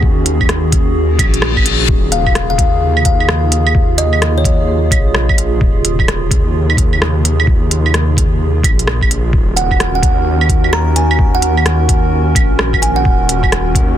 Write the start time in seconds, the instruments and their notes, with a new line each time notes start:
Already playing: detuned saw bass D#2, ambient pad D#3 C#4 F#4 G#4
0.03 kick
0.26 closed hi-hat
0.41 kick, claves
0.49 cross-stick, closed hi-hat
0.72 detuned saw bass D#2, kick, closed hi-hat
0.96 reverse cymbal
1.19 detuned saw bass A#1, kick, closed hi-hat, claves
1.34 closed hi-hat
1.42 cross-stick
1.57 kick, claves
1.66 closed hi-hat
1.88 detuned saw bass D#1, ambient pad C3 C#3 F4, kick
2.12 kalimba F5, closed hi-hat
2.26 kick, claves
2.35 cross-stick, closed hi-hat
2.50 kalimba F5
2.58 detuned saw bass D#2, kick, closed hi-hat
2.97 claves
3.05 kalimba F5, kick, closed hi-hat
3.20 claves
3.29 cross-stick
3.52 closed hi-hat
3.67 claves
3.75 kick
3.98 kalimba D#5, closed hi-hat
4.13 claves
4.22 cross-stick, closed hi-hat
4.38 kalimba C#5
4.44 detuned saw bass D#2, kick, closed hi-hat
4.91 detuned saw bass A#1, kick, closed hi-hat, claves
5.15 cross-stick
5.29 kick, claves
5.38 closed hi-hat
5.61 detuned saw bass D#1, kick
5.85 closed hi-hat
5.99 kick, claves
6.08 cross-stick, closed hi-hat
6.31 detuned saw bass D#2, kick, closed hi-hat
6.70 claves
6.77 kick, closed hi-hat
6.93 claves
7.02 cross-stick
7.25 closed hi-hat
7.40 claves
7.47 kick
7.71 closed hi-hat
7.86 claves
7.94 cross-stick, closed hi-hat
8.17 detuned saw bass D#2, kick, closed hi-hat
8.63 detuned saw bass A#1, kick, closed hi-hat, claves
8.79 closed hi-hat
8.87 cross-stick
9.01 kick, claves
9.11 closed hi-hat
9.33 detuned saw bass D#1, ambient pad D#3 C#4 F#4 A#4, kick
9.57 kalimba F#5, closed hi-hat
9.71 kick, claves
9.80 cross-stick, closed hi-hat
9.95 kalimba F#5
10.03 detuned saw bass D#2, kick, closed hi-hat
10.41 claves
10.49 kick, closed hi-hat
10.64 claves
10.73 kalimba A#5, cross-stick
10.96 kalimba G#5, closed hi-hat
11.11 claves
11.19 kick
11.35 kalimba F#5
11.42 closed hi-hat
11.57 claves
11.66 cross-stick, closed hi-hat
11.89 detuned saw bass D#2, kick, closed hi-hat
12.35 detuned saw bass A#1, kick, closed hi-hat, claves
12.59 cross-stick
12.73 kick, claves
12.82 kalimba G#5, closed hi-hat
12.96 kalimba F#5
13.05 detuned saw bass D#1, kick
13.29 closed hi-hat
13.43 kick, claves
13.52 cross-stick, closed hi-hat
13.75 detuned saw bass D#2, kick, closed hi-hat